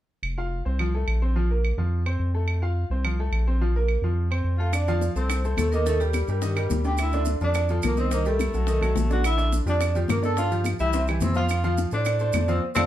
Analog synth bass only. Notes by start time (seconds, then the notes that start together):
0.23 F1
0.66 C2
1.07 A#1
1.78 F2
2.20 F2
2.90 C2
3.32 A#1
4.02 F2
4.44 F2
5.16 C2
5.58 D#2
6.28 G2
6.70 D2
7.41 F2
7.84 C2
8.54 B1
8.82 B1
8.95 A#1
9.66 F2
10.09 G2
10.80 C2
11.21 F2
11.92 A2
12.34 F2
12.76 F2